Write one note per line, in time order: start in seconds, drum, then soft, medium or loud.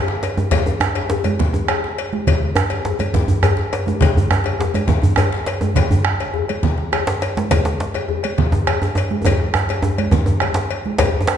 0.08 djembe slap medium
0.22 cowbell soft
0.22 djembe slap soft
0.22 djembe slap medium
0.37 bombo rim soft
0.37 djembe slap soft
0.37 djembe tone medium
0.37 high conga soft
0.37 djembe tone medium
0.51 bombo low loud
0.51 cowbell medium
0.51 djembe slap medium
0.51 djembe bass medium
0.51 low conga medium
0.66 djembe tone medium
0.66 high conga soft
0.80 bombo rim loud
0.80 djembe tone medium
0.95 bombo rim soft
0.95 cowbell soft
0.95 djembe slap medium
0.95 djembe tone medium
1.10 bombo rim soft
1.10 djembe slap medium
1.10 high conga soft
1.10 djembe bass medium
1.24 bombo rim soft
1.24 cowbell soft
1.24 djembe tone medium
1.24 high conga medium
1.39 bombo rim soft
1.39 bombo low medium
1.39 djembe slap medium
1.39 low conga medium
1.53 bombo rim soft
1.53 djembe tone medium
1.68 bombo rim loud
1.68 cowbell soft
1.68 djembe bass medium
1.84 djembe slap medium
1.98 cowbell soft
1.98 djembe slap soft
2.13 bombo rim soft
2.13 djembe slap soft
2.13 high conga medium
2.13 djembe tone soft
2.27 bombo low loud
2.27 cowbell soft
2.27 djembe slap medium
2.27 low conga medium
2.27 djembe bass medium
2.42 djembe slap soft
2.56 bombo rim medium
2.56 djembe tone loud
2.70 cowbell soft
2.70 djembe slap soft
2.70 high conga soft
2.70 djembe tone medium
2.85 djembe slap medium
2.85 djembe bass medium
2.99 cowbell soft
2.99 djembe slap soft
2.99 djembe tone medium
2.99 high conga medium
3.13 bombo low medium
3.13 djembe slap medium
3.13 djembe tone medium
3.13 high conga soft
3.13 low conga medium
3.28 djembe slap soft
3.28 djembe tone medium
3.28 djembe bass medium
3.43 bombo rim medium
3.43 cowbell soft
3.43 djembe tone medium
3.43 djembe bass medium
3.57 djembe slap medium
3.72 cowbell soft
3.72 djembe slap soft
3.72 djembe slap medium
3.86 djembe tone medium
3.86 high conga medium
3.88 djembe tone medium
4.01 bombo low medium
4.01 cowbell medium
4.01 djembe slap medium
4.01 djembe tone medium
4.01 djembe bass medium
4.01 low conga medium
4.17 djembe bass medium
4.31 bombo rim loud
4.31 djembe tone loud
4.44 bombo rim soft
4.44 cowbell soft
4.44 djembe slap medium
4.44 djembe tone medium
4.59 bombo rim soft
4.59 djembe slap medium
4.59 high conga soft
4.59 djembe bass medium
4.73 bombo rim soft
4.73 cowbell soft
4.73 high conga medium
4.73 djembe tone medium
4.87 bombo rim soft
4.87 bombo low loud
4.87 djembe slap medium
4.87 djembe tone medium
4.87 low conga medium
5.02 bombo rim soft
5.02 djembe tone medium
5.02 djembe bass medium
5.16 bombo rim loud
5.16 cowbell soft
5.16 djembe tone medium
5.16 djembe bass medium
5.32 djembe slap medium
5.46 cowbell soft
5.46 djembe slap soft
5.46 djembe slap medium
5.61 bombo rim soft
5.61 djembe slap soft
5.61 djembe tone medium
5.61 high conga medium
5.75 bombo low loud
5.75 cowbell medium
5.75 djembe slap medium
5.75 djembe tone medium
5.75 low conga medium
5.75 djembe bass medium
5.91 high conga soft
5.91 djembe bass medium
6.05 bombo rim loud
6.19 bombo rim soft
6.19 cowbell soft
6.19 djembe slap medium
6.19 djembe tone soft
6.33 bombo rim soft
6.33 high conga soft
6.33 djembe bass medium
6.48 bombo rim soft
6.48 cowbell soft
6.48 high conga medium
6.63 bombo rim soft
6.63 bombo low medium
6.63 djembe slap medium
6.63 low conga medium
6.78 bombo rim soft
6.78 djembe tone medium
6.92 bombo rim medium
6.92 cowbell soft
6.92 djembe bass medium
7.07 djembe slap medium
7.22 cowbell soft
7.22 djembe slap soft
7.22 djembe slap medium
7.36 bombo rim soft
7.36 djembe slap soft
7.36 djembe slap medium
7.36 djembe tone soft
7.36 high conga medium
7.51 bombo low medium
7.51 cowbell medium
7.51 djembe slap medium
7.51 djembe bass medium
7.51 low conga medium
7.65 djembe slap medium
7.65 high conga soft
7.80 djembe slap medium
7.94 bombo rim soft
7.94 cowbell soft
7.94 djembe slap medium
7.94 djembe tone medium
8.08 bombo rim soft
8.08 high conga soft
8.08 djembe bass medium
8.23 bombo rim soft
8.23 cowbell soft
8.23 high conga medium
8.38 bombo rim soft
8.38 bombo low loud
8.38 djembe slap medium
8.38 low conga medium
8.52 bombo rim soft
8.52 djembe tone medium
8.67 bombo rim medium
8.67 cowbell medium
8.67 djembe bass medium
8.82 djembe slap medium
8.82 djembe tone medium
8.95 cowbell soft
8.95 djembe slap soft
8.95 djembe tone medium
9.11 bombo rim soft
9.11 djembe slap soft
9.11 high conga medium
9.11 djembe tone soft
9.25 bombo low loud
9.25 cowbell medium
9.25 djembe slap medium
9.25 djembe tone medium
9.25 low conga medium
9.25 djembe bass medium
9.40 bombo rim soft
9.40 djembe slap soft
9.40 high conga soft
9.54 bombo rim loud
9.54 djembe slap soft
9.54 high conga soft
9.54 djembe tone medium
9.69 cowbell soft
9.69 djembe slap soft
9.69 djembe tone soft
9.69 high conga soft
9.82 djembe slap soft
9.82 djembe tone loud
9.82 djembe bass medium
9.98 bombo rim soft
9.98 cowbell soft
9.98 djembe slap soft
9.98 high conga medium
10.11 bombo rim soft
10.11 bombo low loud
10.11 djembe slap medium
10.11 djembe tone medium
10.11 low conga medium
10.26 bombo rim soft
10.26 djembe tone medium
10.40 bombo rim medium
10.40 cowbell soft
10.40 djembe slap soft
10.40 djembe bass medium
10.54 bombo rim soft
10.54 djembe slap loud
10.54 djembe slap medium
10.70 cowbell soft
10.70 djembe slap soft
10.85 djembe slap soft
10.85 djembe tone soft
10.85 high conga medium
10.98 bombo low medium
10.98 cowbell medium
10.98 djembe slap loud
10.98 djembe slap medium
10.98 djembe bass medium
11.21 djembe tone medium
11.27 bombo rim medium
11.27 djembe slap loud